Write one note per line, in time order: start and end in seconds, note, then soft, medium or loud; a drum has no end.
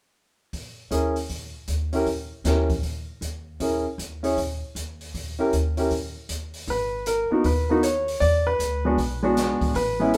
0.53 kick soft
0.53 open hi-hat soft
0.91 1.53 D#2 medium
0.91 1.13 C#4 medium
0.91 1.14 E4 soft
0.91 1.14 G#4 soft
0.91 1.14 A#4 medium
0.91 closed hi-hat soft
1.16 open hi-hat soft
1.29 kick soft
1.29 open hi-hat soft
1.67 2.30 D#2 medium
1.67 closed hi-hat soft
1.93 2.05 C#4 medium
1.93 2.06 E4 soft
1.93 2.06 G4 soft
1.93 2.06 A#4 medium
1.93 open hi-hat soft
2.06 kick soft
2.06 open hi-hat soft
2.44 3.07 D#2 medium
2.44 2.68 C#4 soft
2.44 2.68 E4 soft
2.44 2.68 G4 soft
2.44 2.68 A#4 medium
2.44 snare soft
2.44 closed hi-hat soft
2.69 kick soft
2.69 open hi-hat soft
2.83 kick soft
2.83 open hi-hat soft
3.21 3.84 D#2 medium
3.21 closed hi-hat soft
3.60 3.83 C#4 soft
3.60 3.83 E4 soft
3.60 3.83 G#4 soft
3.60 3.84 A#4 soft
3.60 kick soft
3.60 open hi-hat soft
3.98 4.61 D#2 medium
3.98 closed hi-hat soft
4.23 4.36 C#4 medium
4.23 4.36 E4 soft
4.23 4.36 G#4 soft
4.23 4.37 C#5 medium
4.23 open hi-hat soft
4.37 kick soft
4.37 open hi-hat soft
4.75 5.38 D#2 medium
4.75 closed hi-hat soft
5.01 open hi-hat soft
5.14 kick soft
5.14 open hi-hat soft
5.39 5.51 C#4 medium
5.39 5.52 E4 soft
5.39 5.52 G4 medium
5.39 5.52 A#4 medium
5.53 6.15 D#2 medium
5.53 closed hi-hat soft
5.77 5.90 C#4 medium
5.77 5.90 E4 medium
5.77 5.90 G4 soft
5.77 5.91 A#4 medium
5.77 open hi-hat soft
5.91 kick soft
5.91 open hi-hat soft
6.29 6.65 D#2 medium
6.29 closed hi-hat soft
6.54 open hi-hat soft
6.67 7.27 G#1 medium
6.67 7.05 B4 medium
6.67 kick soft
6.67 open hi-hat soft
7.06 7.46 A#4 medium
7.06 closed hi-hat soft
7.31 7.43 A#3 medium
7.31 7.44 B3 medium
7.31 7.44 D#4 medium
7.31 7.44 F#4 medium
7.31 muted upright bass stroke soft
7.44 8.17 D#2 medium
7.44 7.85 B4 medium
7.44 kick soft
7.44 open hi-hat soft
7.70 7.82 A#3 medium
7.70 7.82 B3 medium
7.70 7.83 D#4 medium
7.70 7.83 F#4 medium
7.83 8.19 C#5 medium
7.83 closed hi-hat soft
8.08 open hi-hat soft
8.20 8.57 E2 medium
8.20 8.46 D5 loud
8.20 kick soft
8.20 open hi-hat soft
8.47 9.19 B4 medium
8.59 8.95 D2 medium
8.59 closed hi-hat soft
8.85 8.97 G#3 medium
8.85 8.97 B3 medium
8.85 8.98 D4 medium
8.85 8.98 F#4 medium
8.98 9.57 B1 medium
8.98 kick soft
8.98 open hi-hat soft
9.23 9.72 G#3 medium
9.23 9.72 B3 medium
9.23 9.73 D4 medium
9.23 9.73 F#4 medium
9.37 snare soft
9.37 closed hi-hat soft
9.61 muted upright bass stroke soft
9.61 kick soft
9.61 open hi-hat soft
9.74 10.17 A1 medium
9.74 10.15 B4 medium
9.74 kick soft
9.74 open hi-hat soft
9.99 10.12 G#3 medium
9.99 10.12 B3 medium
9.99 10.13 C#4 medium
9.99 10.13 E4 medium
10.14 closed hi-hat soft